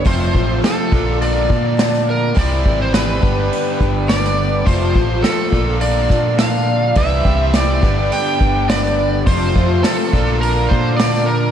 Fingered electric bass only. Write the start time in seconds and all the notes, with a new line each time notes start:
0.05 F1
0.34 A1
0.93 A#1
1.50 A#2
2.37 C2
2.66 G#1
3.23 G1
3.81 G1
4.67 F1
4.96 A1
5.52 A#1
6.10 A#2
6.96 C2
7.25 C2
7.83 G1
8.41 G1
9.27 F1
9.56 F2
10.13 A#1
10.71 A#2